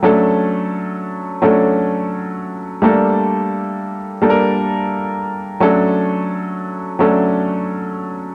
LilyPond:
\new Staff \with { instrumentName = "Grand piano" } { \time 4/4 \key d \major \tempo 4 = 86 <fis a cis' d' a'>4. r8 <fis a cis' d' a'>4. r8 | <g a bes d' a'>4. r8 <g bes d' a' bes'>4. r8 | <fis a cis' d' a'>4. r8 <fis a cis' d' a'>4. r8 | }